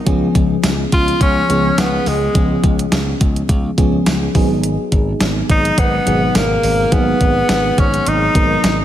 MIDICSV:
0, 0, Header, 1, 5, 480
1, 0, Start_track
1, 0, Tempo, 571429
1, 55, Time_signature, 4, 2, 24, 8
1, 7431, End_track
2, 0, Start_track
2, 0, Title_t, "Tenor saxophone"
2, 0, Program_c, 0, 66
2, 783, Note_on_c, 0, 65, 112
2, 1003, Note_off_c, 0, 65, 0
2, 1024, Note_on_c, 0, 61, 113
2, 1504, Note_on_c, 0, 59, 98
2, 1517, Note_off_c, 0, 61, 0
2, 1746, Note_on_c, 0, 56, 87
2, 1758, Note_off_c, 0, 59, 0
2, 2220, Note_off_c, 0, 56, 0
2, 4626, Note_on_c, 0, 63, 104
2, 4864, Note_on_c, 0, 59, 105
2, 4877, Note_off_c, 0, 63, 0
2, 5343, Note_on_c, 0, 58, 98
2, 5356, Note_off_c, 0, 59, 0
2, 5821, Note_on_c, 0, 59, 108
2, 5834, Note_off_c, 0, 58, 0
2, 6544, Note_on_c, 0, 61, 94
2, 6556, Note_off_c, 0, 59, 0
2, 6783, Note_on_c, 0, 63, 99
2, 6796, Note_off_c, 0, 61, 0
2, 7431, Note_off_c, 0, 63, 0
2, 7431, End_track
3, 0, Start_track
3, 0, Title_t, "FM electric piano"
3, 0, Program_c, 1, 5
3, 0, Control_c, 1, 64, 127
3, 51, Note_on_c, 1, 53, 99
3, 54, Note_on_c, 1, 59, 85
3, 58, Note_on_c, 1, 61, 82
3, 61, Note_on_c, 1, 68, 101
3, 65, Control_c, 1, 64, 0
3, 194, Control_c, 1, 64, 127
3, 942, Note_off_c, 1, 53, 0
3, 943, Note_off_c, 1, 59, 0
3, 945, Note_off_c, 1, 61, 0
3, 947, Note_off_c, 1, 68, 0
3, 1249, Note_on_c, 1, 53, 69
3, 1254, Note_on_c, 1, 59, 66
3, 1257, Note_on_c, 1, 61, 67
3, 1260, Note_on_c, 1, 68, 79
3, 1918, Note_off_c, 1, 53, 0
3, 1921, Note_off_c, 1, 59, 0
3, 1922, Note_off_c, 1, 61, 0
3, 1924, Note_off_c, 1, 68, 0
3, 1970, Note_on_c, 1, 53, 76
3, 1974, Note_on_c, 1, 59, 69
3, 1976, Note_on_c, 1, 61, 69
3, 1980, Note_on_c, 1, 68, 85
3, 2861, Note_off_c, 1, 53, 0
3, 2863, Note_off_c, 1, 59, 0
3, 2864, Note_off_c, 1, 61, 0
3, 2866, Note_off_c, 1, 68, 0
3, 3172, Note_on_c, 1, 53, 81
3, 3175, Note_on_c, 1, 59, 76
3, 3179, Note_on_c, 1, 61, 74
3, 3182, Note_on_c, 1, 68, 91
3, 3646, Note_off_c, 1, 59, 0
3, 3652, Note_off_c, 1, 68, 0
3, 3652, Note_on_c, 1, 54, 94
3, 3654, Note_off_c, 1, 53, 0
3, 3656, Note_on_c, 1, 59, 84
3, 3657, Note_off_c, 1, 61, 0
3, 3658, Note_on_c, 1, 63, 87
3, 3662, Note_on_c, 1, 68, 106
3, 3667, Control_c, 1, 64, 0
3, 3830, Control_c, 1, 64, 127
3, 4542, Note_off_c, 1, 54, 0
3, 4544, Note_off_c, 1, 59, 0
3, 4545, Note_off_c, 1, 63, 0
3, 4547, Note_off_c, 1, 68, 0
3, 5090, Note_on_c, 1, 54, 70
3, 5094, Note_on_c, 1, 47, 61
3, 5097, Note_on_c, 1, 63, 65
3, 5100, Note_on_c, 1, 68, 79
3, 5759, Note_off_c, 1, 54, 0
3, 5761, Note_off_c, 1, 47, 0
3, 5762, Note_off_c, 1, 63, 0
3, 5764, Note_off_c, 1, 68, 0
3, 5811, Note_on_c, 1, 54, 77
3, 5813, Note_on_c, 1, 58, 54
3, 5817, Note_on_c, 1, 63, 75
3, 5821, Note_on_c, 1, 68, 88
3, 5868, Note_on_c, 1, 59, 71
3, 5874, Note_off_c, 1, 58, 0
3, 6701, Note_off_c, 1, 54, 0
3, 6705, Note_off_c, 1, 63, 0
3, 6706, Note_off_c, 1, 68, 0
3, 6730, Note_off_c, 1, 59, 0
3, 7011, Note_on_c, 1, 54, 72
3, 7015, Note_on_c, 1, 59, 66
3, 7017, Note_on_c, 1, 63, 67
3, 7021, Note_on_c, 1, 70, 78
3, 7431, Note_off_c, 1, 54, 0
3, 7431, Note_off_c, 1, 59, 0
3, 7431, Note_off_c, 1, 63, 0
3, 7431, Note_off_c, 1, 70, 0
3, 7431, End_track
4, 0, Start_track
4, 0, Title_t, "Slap bass"
4, 0, Program_c, 2, 36
4, 55, Note_on_c, 2, 37, 106
4, 228, Note_off_c, 2, 37, 0
4, 295, Note_on_c, 2, 37, 108
4, 468, Note_off_c, 2, 37, 0
4, 535, Note_on_c, 2, 37, 104
4, 708, Note_off_c, 2, 37, 0
4, 776, Note_on_c, 2, 37, 106
4, 949, Note_off_c, 2, 37, 0
4, 1014, Note_on_c, 2, 37, 94
4, 1188, Note_off_c, 2, 37, 0
4, 1256, Note_on_c, 2, 37, 90
4, 1428, Note_off_c, 2, 37, 0
4, 1493, Note_on_c, 2, 37, 99
4, 1667, Note_off_c, 2, 37, 0
4, 1734, Note_on_c, 2, 37, 93
4, 1907, Note_off_c, 2, 37, 0
4, 1975, Note_on_c, 2, 37, 103
4, 2148, Note_off_c, 2, 37, 0
4, 2215, Note_on_c, 2, 37, 108
4, 2388, Note_off_c, 2, 37, 0
4, 2455, Note_on_c, 2, 37, 100
4, 2628, Note_off_c, 2, 37, 0
4, 2695, Note_on_c, 2, 37, 93
4, 2868, Note_off_c, 2, 37, 0
4, 2933, Note_on_c, 2, 37, 105
4, 3106, Note_off_c, 2, 37, 0
4, 3174, Note_on_c, 2, 37, 99
4, 3347, Note_off_c, 2, 37, 0
4, 3414, Note_on_c, 2, 37, 100
4, 3587, Note_off_c, 2, 37, 0
4, 3654, Note_on_c, 2, 32, 104
4, 4000, Note_off_c, 2, 32, 0
4, 4134, Note_on_c, 2, 32, 102
4, 4307, Note_off_c, 2, 32, 0
4, 4374, Note_on_c, 2, 32, 105
4, 4547, Note_off_c, 2, 32, 0
4, 4616, Note_on_c, 2, 32, 103
4, 4789, Note_off_c, 2, 32, 0
4, 4853, Note_on_c, 2, 32, 95
4, 5026, Note_off_c, 2, 32, 0
4, 5096, Note_on_c, 2, 32, 95
4, 5268, Note_off_c, 2, 32, 0
4, 5336, Note_on_c, 2, 32, 89
4, 5508, Note_off_c, 2, 32, 0
4, 5576, Note_on_c, 2, 32, 100
4, 5748, Note_off_c, 2, 32, 0
4, 5814, Note_on_c, 2, 32, 112
4, 5987, Note_off_c, 2, 32, 0
4, 6053, Note_on_c, 2, 32, 99
4, 6227, Note_off_c, 2, 32, 0
4, 6294, Note_on_c, 2, 32, 103
4, 6467, Note_off_c, 2, 32, 0
4, 6536, Note_on_c, 2, 32, 106
4, 6709, Note_off_c, 2, 32, 0
4, 6776, Note_on_c, 2, 32, 98
4, 6949, Note_off_c, 2, 32, 0
4, 7015, Note_on_c, 2, 32, 102
4, 7188, Note_off_c, 2, 32, 0
4, 7255, Note_on_c, 2, 32, 100
4, 7428, Note_off_c, 2, 32, 0
4, 7431, End_track
5, 0, Start_track
5, 0, Title_t, "Drums"
5, 55, Note_on_c, 9, 42, 86
5, 56, Note_on_c, 9, 36, 102
5, 139, Note_off_c, 9, 42, 0
5, 140, Note_off_c, 9, 36, 0
5, 295, Note_on_c, 9, 36, 87
5, 295, Note_on_c, 9, 42, 63
5, 379, Note_off_c, 9, 36, 0
5, 379, Note_off_c, 9, 42, 0
5, 534, Note_on_c, 9, 38, 112
5, 536, Note_on_c, 9, 42, 87
5, 538, Note_on_c, 9, 54, 65
5, 618, Note_off_c, 9, 38, 0
5, 620, Note_off_c, 9, 42, 0
5, 622, Note_off_c, 9, 54, 0
5, 775, Note_on_c, 9, 42, 62
5, 777, Note_on_c, 9, 36, 92
5, 859, Note_off_c, 9, 42, 0
5, 861, Note_off_c, 9, 36, 0
5, 907, Note_on_c, 9, 42, 58
5, 991, Note_off_c, 9, 42, 0
5, 1014, Note_on_c, 9, 36, 100
5, 1015, Note_on_c, 9, 42, 95
5, 1098, Note_off_c, 9, 36, 0
5, 1099, Note_off_c, 9, 42, 0
5, 1258, Note_on_c, 9, 42, 75
5, 1342, Note_off_c, 9, 42, 0
5, 1495, Note_on_c, 9, 42, 76
5, 1497, Note_on_c, 9, 38, 116
5, 1497, Note_on_c, 9, 54, 65
5, 1579, Note_off_c, 9, 42, 0
5, 1581, Note_off_c, 9, 38, 0
5, 1581, Note_off_c, 9, 54, 0
5, 1733, Note_on_c, 9, 46, 70
5, 1817, Note_off_c, 9, 46, 0
5, 1975, Note_on_c, 9, 36, 105
5, 1975, Note_on_c, 9, 42, 85
5, 2059, Note_off_c, 9, 36, 0
5, 2059, Note_off_c, 9, 42, 0
5, 2214, Note_on_c, 9, 42, 65
5, 2215, Note_on_c, 9, 36, 83
5, 2298, Note_off_c, 9, 42, 0
5, 2299, Note_off_c, 9, 36, 0
5, 2346, Note_on_c, 9, 42, 61
5, 2430, Note_off_c, 9, 42, 0
5, 2452, Note_on_c, 9, 38, 117
5, 2455, Note_on_c, 9, 42, 83
5, 2456, Note_on_c, 9, 54, 62
5, 2536, Note_off_c, 9, 38, 0
5, 2539, Note_off_c, 9, 42, 0
5, 2540, Note_off_c, 9, 54, 0
5, 2695, Note_on_c, 9, 42, 65
5, 2696, Note_on_c, 9, 36, 93
5, 2779, Note_off_c, 9, 42, 0
5, 2780, Note_off_c, 9, 36, 0
5, 2826, Note_on_c, 9, 42, 57
5, 2910, Note_off_c, 9, 42, 0
5, 2933, Note_on_c, 9, 36, 98
5, 2934, Note_on_c, 9, 42, 98
5, 3017, Note_off_c, 9, 36, 0
5, 3018, Note_off_c, 9, 42, 0
5, 3174, Note_on_c, 9, 36, 92
5, 3177, Note_on_c, 9, 42, 76
5, 3258, Note_off_c, 9, 36, 0
5, 3261, Note_off_c, 9, 42, 0
5, 3413, Note_on_c, 9, 42, 72
5, 3415, Note_on_c, 9, 38, 112
5, 3415, Note_on_c, 9, 54, 68
5, 3497, Note_off_c, 9, 42, 0
5, 3499, Note_off_c, 9, 38, 0
5, 3499, Note_off_c, 9, 54, 0
5, 3652, Note_on_c, 9, 46, 70
5, 3654, Note_on_c, 9, 36, 106
5, 3736, Note_off_c, 9, 46, 0
5, 3738, Note_off_c, 9, 36, 0
5, 3893, Note_on_c, 9, 42, 86
5, 3977, Note_off_c, 9, 42, 0
5, 4133, Note_on_c, 9, 42, 65
5, 4134, Note_on_c, 9, 36, 80
5, 4217, Note_off_c, 9, 42, 0
5, 4218, Note_off_c, 9, 36, 0
5, 4372, Note_on_c, 9, 38, 122
5, 4375, Note_on_c, 9, 42, 85
5, 4376, Note_on_c, 9, 54, 63
5, 4456, Note_off_c, 9, 38, 0
5, 4459, Note_off_c, 9, 42, 0
5, 4460, Note_off_c, 9, 54, 0
5, 4616, Note_on_c, 9, 36, 92
5, 4616, Note_on_c, 9, 42, 65
5, 4700, Note_off_c, 9, 36, 0
5, 4700, Note_off_c, 9, 42, 0
5, 4747, Note_on_c, 9, 42, 59
5, 4831, Note_off_c, 9, 42, 0
5, 4854, Note_on_c, 9, 36, 93
5, 4854, Note_on_c, 9, 42, 100
5, 4938, Note_off_c, 9, 36, 0
5, 4938, Note_off_c, 9, 42, 0
5, 5097, Note_on_c, 9, 42, 77
5, 5181, Note_off_c, 9, 42, 0
5, 5334, Note_on_c, 9, 42, 77
5, 5336, Note_on_c, 9, 38, 109
5, 5336, Note_on_c, 9, 54, 64
5, 5418, Note_off_c, 9, 42, 0
5, 5420, Note_off_c, 9, 38, 0
5, 5420, Note_off_c, 9, 54, 0
5, 5573, Note_on_c, 9, 46, 73
5, 5657, Note_off_c, 9, 46, 0
5, 5813, Note_on_c, 9, 42, 83
5, 5814, Note_on_c, 9, 36, 106
5, 5897, Note_off_c, 9, 42, 0
5, 5898, Note_off_c, 9, 36, 0
5, 6053, Note_on_c, 9, 42, 64
5, 6054, Note_on_c, 9, 36, 82
5, 6137, Note_off_c, 9, 42, 0
5, 6138, Note_off_c, 9, 36, 0
5, 6292, Note_on_c, 9, 38, 123
5, 6294, Note_on_c, 9, 42, 80
5, 6296, Note_on_c, 9, 54, 62
5, 6376, Note_off_c, 9, 38, 0
5, 6378, Note_off_c, 9, 42, 0
5, 6380, Note_off_c, 9, 54, 0
5, 6536, Note_on_c, 9, 42, 66
5, 6537, Note_on_c, 9, 36, 93
5, 6620, Note_off_c, 9, 42, 0
5, 6621, Note_off_c, 9, 36, 0
5, 6667, Note_on_c, 9, 42, 57
5, 6751, Note_off_c, 9, 42, 0
5, 6775, Note_on_c, 9, 42, 96
5, 6859, Note_off_c, 9, 42, 0
5, 7015, Note_on_c, 9, 36, 97
5, 7018, Note_on_c, 9, 42, 74
5, 7099, Note_off_c, 9, 36, 0
5, 7102, Note_off_c, 9, 42, 0
5, 7256, Note_on_c, 9, 42, 82
5, 7258, Note_on_c, 9, 38, 113
5, 7258, Note_on_c, 9, 54, 66
5, 7340, Note_off_c, 9, 42, 0
5, 7342, Note_off_c, 9, 38, 0
5, 7342, Note_off_c, 9, 54, 0
5, 7431, End_track
0, 0, End_of_file